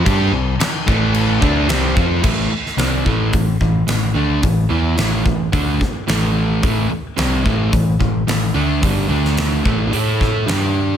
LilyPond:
<<
  \new Staff \with { instrumentName = "Distorted electric guitar" } { \clef bass \time 4/4 \key a \minor \tempo 4 = 109 <g d' g'>8 <c g>8 r8 <a, e a>4 <d a d'>8 <c g c'>8 <f c' f'>8 | r1 | r1 | r1 |
r1 | }
  \new Staff \with { instrumentName = "Distorted electric guitar" } { \clef bass \time 4/4 \key a \minor <g d' g'>8 <c g>8 r8 <a, e a>4 <d a d'>8 <c g c'>8 <f c' f'>8 | <a, e a>8 r8 <c g c'>8 <a, e a>8 <a, e>8 <a, e>8 <a, e>8 <d a d'>8 | <a, e>8 <e b e'>8 <a, e a>8 <a, e>8 <d a d'>8 r8 <a, e a>4 | <a, e a>8 r8 <c g c'>8 <a, e a>8 <a, e>8 <a, e>8 <a, e>8 <d a d'>8 |
<g, d g>8 <d a d'>4 <a, e a>8 <a e' a'>4 <g d' g'>4 | }
  \new Staff \with { instrumentName = "Overdriven electric guitar" } { \clef bass \time 4/4 \key a \minor <g d' g'>8 <c g>8 r8 <a, e a>4 <d a d'>8 <c g c'>8 <f c' f'>8 | <a, e a>8 r8 <c g c'>8 <a, e a>8 <a, e>8 <a, e>8 <a, e>8 <d a d'>8 | <a, e>8 <e b e'>8 <a, e a>8 <a, e>8 <d a d'>8 r8 <a, e a>4 | <a, e a>8 r8 <c g c'>8 <a, e a>8 <a, e>8 <a, e>8 <a, e>8 <d a d'>8 |
<g, d g>8 <d a d'>4 <a, e a>8 <a e' a'>4 <g d' g'>4 | }
  \new Staff \with { instrumentName = "Picked electric bass" } { \clef bass \time 4/4 \key a \minor g,8 c,8 r8 a,,4 d,8 c,8 f,8 | a,,8 r8 c,8 a,,8 a,,8 a,,8 a,,8 d,8 | a,,8 e,8 a,,8 a,,8 d,8 r8 a,,4 | a,,8 r8 c,8 a,,8 a,,8 a,,8 a,,8 d,8 |
g,,8 d,4 a,,8 a,4 g,4 | }
  \new DrumStaff \with { instrumentName = "Drums" } \drummode { \time 4/4 <cymc bd>4 <cymc sn>8 bd8 cymc8 bd8 <cymc sn>8 bd8 | <cymc bd>8. sn16 <hho sn>8 bd8 <hho bd>8 bd8 <hho sn>4 | <hho bd>4 <hho sn>8 bd8 <hho bd>8 <bd sn>8 <hho sn>4 | <hho bd>4 <hho sn>8 bd8 <hho bd>8 bd8 <hho sn>4 |
<hho bd>8. sn16 <hho sn>8 bd8 hho8 <bd sn>8 <hho sn>4 | }
>>